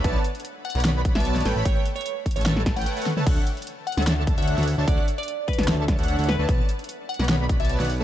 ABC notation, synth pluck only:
X:1
M:4/4
L:1/16
Q:1/4=149
K:D
V:1 name="Synth pluck"
z6 f f z3 e2 z3 | c c z c2 z2 c c z2 f f z3 | z6 f f z3 e2 z3 | d d z d3 B2 z6 B2 |
z6 f f z3 e2 z3 |]